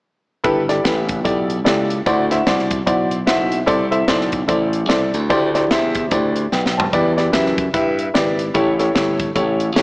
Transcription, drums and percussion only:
0.44 kick, closed hi-hat
0.69 snare, closed hi-hat
0.85 kick, snare, closed hi-hat
1.09 kick, closed hi-hat
1.25 kick, closed hi-hat
1.50 closed hi-hat
1.66 snare, closed hi-hat
1.90 closed hi-hat
2.06 kick, closed hi-hat
2.31 snare, closed hi-hat
2.47 kick, snare, closed hi-hat
2.59 snare
2.71 kick, closed hi-hat
2.87 kick, closed hi-hat
3.11 closed hi-hat
3.27 snare, closed hi-hat
3.52 closed hi-hat
3.67 kick, closed hi-hat
3.92 closed hi-hat
4.08 kick, snare, closed hi-hat
4.21 snare
4.32 kick, closed hi-hat
4.49 kick, closed hi-hat
4.73 closed hi-hat
4.90 snare, closed hi-hat
5.14 closed hi-hat
5.30 kick, closed hi-hat
5.55 snare, closed hi-hat
5.71 kick, snare, closed hi-hat
5.95 kick, closed hi-hat
6.11 kick, closed hi-hat
6.36 closed hi-hat
6.52 snare
6.66 snare
6.80 floor tom
6.93 kick, closed hi-hat
7.18 snare, closed hi-hat
7.33 kick, snare, closed hi-hat
7.46 snare
7.58 kick, closed hi-hat
7.74 kick, closed hi-hat
7.99 closed hi-hat
8.15 snare, closed hi-hat
8.39 closed hi-hat
8.55 kick, closed hi-hat
8.79 snare, closed hi-hat
8.96 kick, snare, closed hi-hat
9.20 kick, closed hi-hat
9.36 kick, closed hi-hat
9.60 closed hi-hat
9.76 snare, closed hi-hat

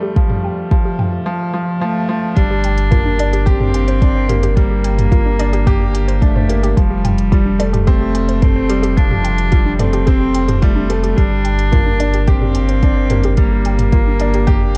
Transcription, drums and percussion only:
0.16 kick
0.30 mid tom
0.71 kick
0.99 mid tom
2.37 kick, closed hi-hat
2.64 closed hi-hat
2.78 closed hi-hat
2.92 kick, closed hi-hat, mid tom
3.19 closed hi-hat
3.33 closed hi-hat
3.47 kick, closed hi-hat
3.60 mid tom
3.74 closed hi-hat
3.88 closed hi-hat
4.02 kick, closed hi-hat
4.29 closed hi-hat, mid tom
4.43 closed hi-hat
4.57 kick, closed hi-hat
4.84 closed hi-hat
4.99 closed hi-hat, mid tom
5.12 kick, closed hi-hat
5.39 closed hi-hat
5.53 closed hi-hat
5.67 kick, closed hi-hat, mid tom
5.95 closed hi-hat
6.08 closed hi-hat
6.22 kick, closed hi-hat
6.36 mid tom
6.50 closed hi-hat
6.63 closed hi-hat
6.77 kick, closed hi-hat
7.05 closed hi-hat, mid tom
7.18 closed hi-hat
7.32 kick, closed hi-hat
7.60 closed hi-hat
7.74 closed hi-hat, mid tom
7.87 kick, closed hi-hat
8.15 closed hi-hat
8.29 closed hi-hat
8.42 kick, closed hi-hat, mid tom
8.70 closed hi-hat
8.83 closed hi-hat
8.97 kick, closed hi-hat
9.11 mid tom
9.25 closed hi-hat
9.38 closed hi-hat
9.52 kick, closed hi-hat
9.79 closed hi-hat, mid tom
9.93 closed hi-hat
10.07 kick, closed hi-hat
10.35 closed hi-hat
10.48 closed hi-hat, mid tom
10.62 kick, closed hi-hat
10.90 closed hi-hat
11.04 closed hi-hat
11.18 kick, closed hi-hat
11.45 closed hi-hat
11.59 closed hi-hat
11.72 kick, closed hi-hat, mid tom
12.00 closed hi-hat
12.14 closed hi-hat
12.27 kick, closed hi-hat
12.41 mid tom
12.55 closed hi-hat
12.69 closed hi-hat
12.83 kick, closed hi-hat
13.10 closed hi-hat, mid tom
13.24 closed hi-hat
13.37 kick, closed hi-hat
13.65 closed hi-hat
13.79 closed hi-hat, mid tom
13.92 kick, closed hi-hat
14.20 closed hi-hat
14.34 closed hi-hat
14.47 kick, closed hi-hat, mid tom

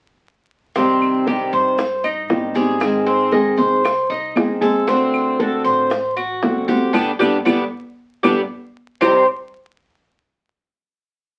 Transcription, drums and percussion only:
0.75 high bongo, high conga, maracas
1.01 high conga, claves, maracas
1.27 high bongo, high conga, maracas
1.52 maracas
1.78 high bongo, high conga, maracas
2.03 high conga, claves, maracas
2.30 high bongo, low bongo, high conga, maracas
2.55 high conga, maracas
2.80 high bongo, high conga, claves, maracas
3.06 high bongo, high conga, maracas
3.32 high bongo, high conga, maracas
3.59 high bongo, high conga, maracas
3.84 high bongo, high conga, claves, maracas
4.10 high bongo, high conga, maracas
4.36 high bongo, low bongo, high conga, claves, maracas
4.62 high conga, maracas
4.88 high bongo, high conga, maracas
5.14 high conga, claves, maracas
5.39 high bongo, high conga, maracas
5.65 maracas
5.90 high bongo, high conga, maracas
6.17 high conga, claves, maracas
6.42 high bongo, low bongo, high conga, maracas
6.68 high conga, maracas
6.94 low bongo, high conga, claves, maracas
7.20 low bongo, high conga, claves, maracas
7.46 low bongo, high conga, claves, maracas
8.24 low bongo, high conga, claves, maracas
9.01 low bongo, low conga, claves, maracas

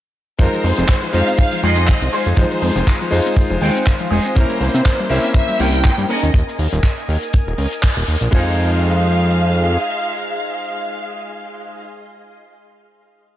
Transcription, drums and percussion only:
0.39 kick, closed hi-hat, tambourine, shaker
0.53 closed hi-hat, tambourine, shaker
0.64 open hi-hat
0.78 closed hi-hat, tambourine, shaker
0.88 kick, clap, closed hi-hat, tambourine, shaker
1.03 tambourine, shaker
1.14 open hi-hat
1.27 closed hi-hat, tambourine, shaker
1.37 kick, closed hi-hat, tambourine, shaker
1.51 tambourine, shaker
1.63 open hi-hat
1.76 closed hi-hat, tambourine, shaker
1.87 kick, clap, closed hi-hat, tambourine, shaker
2.02 closed hi-hat, tambourine, shaker
2.13 open hi-hat
2.26 closed hi-hat, tambourine, shaker
2.37 kick, closed hi-hat, tambourine, shaker
2.51 closed hi-hat, tambourine, shaker
2.62 open hi-hat
2.76 closed hi-hat, tambourine, shaker
2.87 kick, clap, closed hi-hat, tambourine, shaker
3.01 tambourine, shaker
3.12 open hi-hat
3.26 closed hi-hat, tambourine, shaker
3.36 kick, closed hi-hat, tambourine, shaker
3.50 tambourine, shaker
3.61 open hi-hat
3.75 closed hi-hat, tambourine, shaker
3.86 kick, clap, closed hi-hat, tambourine, shaker
4.00 closed hi-hat, tambourine, shaker
4.12 open hi-hat
4.24 closed hi-hat, tambourine, shaker
4.36 kick, closed hi-hat, tambourine, shaker
4.50 closed hi-hat, tambourine, shaker
4.60 open hi-hat
4.75 closed hi-hat, tambourine, shaker
4.86 kick, clap, closed hi-hat, tambourine, shaker
5.00 tambourine, shaker
5.10 open hi-hat
5.24 closed hi-hat, tambourine, shaker
5.34 kick, closed hi-hat, tambourine, shaker
5.49 tambourine, shaker
5.60 open hi-hat
5.73 closed hi-hat, tambourine, shaker
5.84 kick, clap, closed hi-hat, tambourine, shaker
5.99 closed hi-hat, tambourine, shaker
6.09 open hi-hat
6.23 closed hi-hat, tambourine, shaker
6.34 kick, closed hi-hat, shaker
6.49 closed hi-hat, shaker
6.59 open hi-hat
6.73 closed hi-hat, shaker
6.83 kick, clap, closed hi-hat, shaker
6.97 closed hi-hat, shaker
7.09 open hi-hat
7.23 closed hi-hat, shaker
7.33 kick, closed hi-hat, shaker
7.48 shaker
7.58 open hi-hat
7.71 closed hi-hat, shaker
7.82 kick, clap, closed hi-hat, shaker
7.95 closed hi-hat, shaker
8.07 open hi-hat
8.21 closed hi-hat, shaker
8.32 kick, crash

